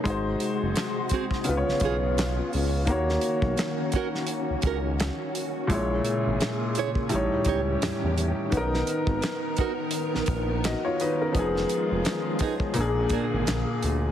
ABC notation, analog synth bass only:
X:1
M:4/4
L:1/16
Q:"Swing 16ths" 1/4=85
K:Ebm
V:1 name="Analog synth bass" clef=bass
A,,,2 z G,,, z4 D,, C,, C,,4 D,,2 | E,,2 z C,, z4 z D,, D,,3 z3 | B,,,2 z A,,, z4 =A,,, ^C,, C,,2 =E,, E,,2 z | =B,,,2 z A,,, z4 z ^A,,, A,,,3 z3 |
F,,,2 z F,,, z4 B,,,2 A,,, A,,, B,,, z =D,,2 |]